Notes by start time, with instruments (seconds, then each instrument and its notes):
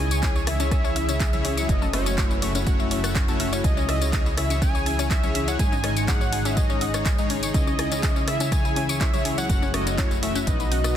Already playing: analog synth bass C#2, ambient pad C#3 E3 G#3 E4 G#4, analog synth lead G#5
0.11 supersaw synth C#3 E4 G#4 C#5, synth arpeggio sound C#6, closed hi-hat, tambourine
0.23 supersaw synth C#3 E4 G#4 C#5, synth arpeggio sound C#4, kick, clap, closed hi-hat, tambourine, high conga
0.36 synth arpeggio sound C#5, tambourine
0.47 supersaw synth C#3 E4 G#4 E5, analog synth lead E5, synth arpeggio sound G#5, cross-stick, open hi-hat
0.60 supersaw synth C#3 E4 G#4 C#5, synth arpeggio sound C#4, closed hi-hat, tambourine, high conga
0.71 supersaw synth C#3 E4 G#4 C#5, synth arpeggio sound G#4, kick, cross-stick, closed hi-hat, tambourine
0.84 synth arpeggio sound C#4, tambourine
0.96 supersaw synth C#3 E4 G#4 E5, synth arpeggio sound E5, open hi-hat, high conga
1.09 supersaw synth C#3 E4 G#4 C#5, synth arpeggio sound C#4, closed hi-hat, tambourine
1.20 synth arpeggio sound G#4, kick, clap, closed hi-hat, tambourine
1.33 supersaw synth C#3 E4 G#4 C#5, synth arpeggio sound E4, closed hi-hat, tambourine, low conga
1.45 synth arpeggio sound C#4, open hi-hat, high conga
1.57 supersaw synth F#3 E4 G#4 C#5, synth arpeggio sound C#6, closed hi-hat, tambourine
1.69 analog synth bass F#1, ambient pad C#3 F#3 A3 F#4, supersaw synth A3 C#4 E4 F#4 C#5, synth arpeggio sound C#4, analog synth lead D#5, kick, closed hi-hat, tambourine
1.82 synth arpeggio sound A4, tambourine, high conga, low conga
1.93 supersaw synth A3 C#4 E4 F#4 D#5, analog synth lead C#5, synth arpeggio sound E5, cross-stick, open hi-hat
2.06 supersaw synth A3 C#4 E4 F#4 C#5, synth arpeggio sound C#4, closed hi-hat, tambourine
2.18 supersaw synth A3 C#4 E4 F#4 C#5, synth arpeggio sound F#4, kick, clap, closed hi-hat, tambourine, high conga
2.31 synth arpeggio sound C#4, tambourine
2.42 supersaw synth A3 C#4 E4 F#4 E5, synth arpeggio sound C#5, open hi-hat
2.55 supersaw synth A3 C#4 E4 F#4 C#5, synth arpeggio sound C#4, closed hi-hat, tambourine, high conga
2.67 supersaw synth A3 C#4 E4 F#4 C#5, synth arpeggio sound F#4, kick, closed hi-hat, tambourine
2.79 synth arpeggio sound E4, tambourine
2.91 supersaw synth A3 C#4 E4 F#4 E5, synth arpeggio sound C#4, open hi-hat, high conga
3.04 supersaw synth A3 C#4 E4 F#4 C#5, synth arpeggio sound F#5, cross-stick, closed hi-hat, tambourine
3.15 synth arpeggio sound C#4, kick, clap, closed hi-hat, tambourine
3.28 supersaw synth A3 C#4 E4 F#4 C#5, synth arpeggio sound A4, closed hi-hat, tambourine
3.40 synth arpeggio sound E5, open hi-hat, high conga
3.53 supersaw synth A3 C#4 E4 F#4 C#5, synth arpeggio sound C#4, closed hi-hat, tambourine
3.64 analog synth bass C#2, ambient pad C#3 E3 G#3 G#4, supersaw synth C#3 E4 G#4 C#5, synth arpeggio sound G#4, analog synth lead D#5, kick, closed hi-hat, tambourine
3.77 synth arpeggio sound C#4, tambourine, high conga, low conga
3.89 supersaw synth C#3 E4 G#4 D#5, synth arpeggio sound E5, cross-stick, open hi-hat
4.01 supersaw synth C#3 E4 G#4 C#5, synth arpeggio sound C#4, closed hi-hat, tambourine
4.13 supersaw synth C#3 E4 G#4 C#5, synth arpeggio sound G#4, kick, clap, closed hi-hat, tambourine, high conga
4.26 synth arpeggio sound E4, tambourine
4.37 supersaw synth C#3 E4 G#4 E5, synth arpeggio sound C#4, analog synth lead E5, cross-stick, open hi-hat
4.50 supersaw synth C#3 E4 G#4 C#5, synth arpeggio sound C#6, closed hi-hat, tambourine, high conga
4.62 supersaw synth C#3 E4 G#4 C#5, synth arpeggio sound C#4, analog synth lead G#5, kick, cross-stick, closed hi-hat, tambourine
4.75 synth arpeggio sound C#5, tambourine
4.86 supersaw synth C#3 E4 G#4 E5, synth arpeggio sound G#5, open hi-hat, high conga
4.99 supersaw synth C#3 E4 G#4 C#5, synth arpeggio sound C#4, closed hi-hat, tambourine
5.11 synth arpeggio sound G#4, analog synth lead E5, kick, clap, closed hi-hat, tambourine
5.23 supersaw synth C#3 E4 G#4 C#5, synth arpeggio sound C#4, closed hi-hat, tambourine, low conga
5.35 synth arpeggio sound E5, open hi-hat, high conga
5.48 synth arpeggio sound C#4, supersaw synth E4 G#4 C#5, analog synth lead F#5, closed hi-hat, tambourine
5.59 analog synth bass G#1, ambient pad C#3 D#3 D#4 G#4, supersaw synth G#3 D#4 G#4 C#5, synth arpeggio sound G#4, analog synth lead G#5, kick, closed hi-hat, tambourine
5.72 synth arpeggio sound D#4, tambourine, high conga, low conga
5.84 supersaw synth G#3 D#4 G#4 D#5, synth arpeggio sound C#4, cross-stick, open hi-hat
5.96 supersaw synth G#3 D#4 G#4 C#5, synth arpeggio sound C#6, closed hi-hat, tambourine
6.08 supersaw synth G#3 D#4 G#4 C#5, synth arpeggio sound C#4, analog synth lead F#5, kick, clap, closed hi-hat, tambourine, high conga
6.21 synth arpeggio sound C#5, tambourine
6.32 supersaw synth G#3 D#4 G#4 F#5, synth arpeggio sound G#5, open hi-hat
6.45 supersaw synth G#3 D#4 G#4 C#5, synth arpeggio sound C#4, analog synth lead E5, closed hi-hat, tambourine, high conga
6.57 supersaw synth G#3 D#4 G#4 C#5, synth arpeggio sound G#4, analog synth lead D#5, kick, closed hi-hat, tambourine
6.70 synth arpeggio sound C#4, tambourine
6.81 supersaw synth G#3 D#4 G#4 F#5, synth arpeggio sound D#5, open hi-hat, high conga
6.94 supersaw synth G#3 D#4 G#4 C#5, synth arpeggio sound C#4, cross-stick, closed hi-hat, tambourine
7.06 synth arpeggio sound G#4, kick, clap, closed hi-hat, tambourine
7.18 supersaw synth G#3 D#4 G#4 C#5, synth arpeggio sound D#4, closed hi-hat, tambourine
7.30 synth arpeggio sound C#4, open hi-hat, high conga
7.43 supersaw synth D#4 G#4 C#5, synth arpeggio sound C#6, closed hi-hat, tambourine
7.54 analog synth bass C#2, supersaw synth C#3 E4 G#4 C#5, ambient pad E3 E4, synth arpeggio sound C#4, analog synth lead D#5, kick, closed hi-hat, tambourine
7.67 synth arpeggio sound C#5, tambourine, high conga, low conga
7.79 supersaw synth C#3 E4 G#4 D#5, synth arpeggio sound G#5, cross-stick, open hi-hat
7.92 supersaw synth C#3 E4 G#4 C#5, synth arpeggio sound C#4, closed hi-hat, tambourine
8.03 supersaw synth C#3 E4 G#4 C#5, synth arpeggio sound G#4, kick, clap, closed hi-hat, tambourine, high conga
8.16 synth arpeggio sound C#4, tambourine
8.28 supersaw synth C#3 E4 G#4 E5, synth arpeggio sound E5, analog synth lead E5, cross-stick, open hi-hat
8.40 supersaw synth C#3 E4 G#4 C#5, synth arpeggio sound C#4, closed hi-hat, tambourine, high conga
8.52 supersaw synth C#3 E4 G#4 C#5, synth arpeggio sound G#4, analog synth lead G#5, kick, cross-stick, closed hi-hat, tambourine
8.65 synth arpeggio sound E4, tambourine
8.76 supersaw synth C#3 E4 G#4 E5, synth arpeggio sound C#4, open hi-hat, high conga
8.89 supersaw synth C#3 E4 G#4 C#5, synth arpeggio sound C#6, closed hi-hat, tambourine
9.01 synth arpeggio sound C#4, analog synth lead E5, kick, clap, closed hi-hat, tambourine
9.14 supersaw synth C#3 E4 G#4 C#5, synth arpeggio sound C#5, closed hi-hat, tambourine, low conga
9.25 synth arpeggio sound G#5, open hi-hat, high conga
9.38 supersaw synth F#3 E4 G#4 C#5, synth arpeggio sound C#4, analog synth lead F#5, closed hi-hat, tambourine
9.49 analog synth bass F#1, ambient pad F#3 A3 F#4, supersaw synth A3 C#4 E4 F#4 C#5, synth arpeggio sound F#4, kick, closed hi-hat, tambourine
9.62 synth arpeggio sound C#4, tambourine, high conga, low conga
9.74 supersaw synth A3 C#4 E4 F#4 D#5, synth arpeggio sound C#5, analog synth lead D#5, cross-stick, open hi-hat
9.87 supersaw synth A3 C#4 E4 F#4 C#5, synth arpeggio sound C#4, closed hi-hat, tambourine
9.98 supersaw synth A3 C#4 E4 F#4 C#5, synth arpeggio sound F#4, analog synth lead C#5, kick, clap, closed hi-hat, tambourine, high conga
10.11 synth arpeggio sound E4, closed hi-hat, tambourine
10.23 supersaw synth A3 C#4 E4 F#4 E5, synth arpeggio sound C#4, analog synth lead E5, open hi-hat
10.35 supersaw synth A3 C#4 E4 F#4 C#5, synth arpeggio sound F#5, closed hi-hat, tambourine, high conga
10.47 analog synth bass B1, ambient pad B2 D#3 D#4 F#4, supersaw synth B2 D#4 F#4 B4, synth arpeggio sound B3, analog synth lead D#5, kick, closed hi-hat, tambourine
10.60 synth arpeggio sound B4, closed hi-hat, tambourine
10.71 supersaw synth B2 D#4 F#4 D#5, synth arpeggio sound F#5, open hi-hat, high conga
10.84 supersaw synth B2 D#4 F#4 B4, synth arpeggio sound D#5, cross-stick, closed hi-hat, tambourine